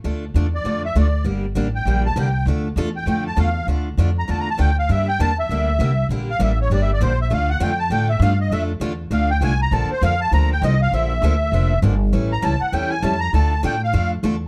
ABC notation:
X:1
M:4/4
L:1/8
Q:"Swing" 1/4=199
K:Dm
V:1 name="Accordion"
z3 d2 e d2 | z3 g2 a g2 | z3 g2 a f2 | z3 b (3a b a g f |
e g a e4- e | z f e ^c (3d e d =c e | f ^f g a g e =f _e | e z3 f g ^g b |
a c f a b g _e f | e6 z2 | z b a ^f g ^g a b | a2 g f2 z3 |]
V:2 name="Steel-string acoustic guitar"
[D,A,DFA] z [D,A,DFA] z [D,A,DFA] z [D,A,DFA] z | [D,G,B,DG] z [D,G,B,DG] z [D,G,B,DG] z [D,G,B,DG] z | [D,A,DFA] z [D,A,DFA] z [D,A,DFA] z [D,A,DFA] z | [D,A,DFA] z [D,A,DFA] z [D,A,DFA] z [D,A,DFA] z |
[D,G,B,DG] z [D,G,B,DG] z [D,G,B,DG] z [D,G,B,DG] z | [D,G,B,DG] z [D,G,B,DG] z [D,G,B,DG] z [D,G,B,DG] z | [D,A,DFA] z [D,A,DFA] z [D,A,DFA] z [D,A,DFA] z | [D,A,DFA] z [D,A,DFA] z [D,A,DFA] z [D,A,DFA] z |
[D,F,B,DA] z [D,F,B,DA] z [D,F,B,DA] z [D,F,B,DA] z | [D,F,B,DA] z [D,F,B,DA] z [D,F,B,DA] z [D,F,B,DA] z | [E,G,^CEA] z [E,G,CEA] z [E,G,CEA] z [E,G,CEA] z | [D,A,DFA] z [D,A,DFA] z [D,A,DFA] z [D,A,DFA] z |]
V:3 name="Upright bass" clef=bass
D,,2 E,,2 F,,2 D,,2 | G,,,2 A,,,2 B,,,2 C,,2 | D,,2 E,,2 F,,2 E,,2 | D,,2 F,,2 E,,2 D,,2 |
G,,2 E,,2 D,,2 C,,2 | B,,,2 A,,,2 G,,,2 B,,,2 | D,,2 F,,2 A,,2 G,,2 | F,,2 E,,2 D,,2 C,,2 |
B,,, z F,,2 D,,2 C,,2 | B,,,2 D,,2 F,,,2 G,,,2 | A,,,2 ^C,, z E,,2 F,,2 | D,,2 A,,2 F,,2 E,,2 |]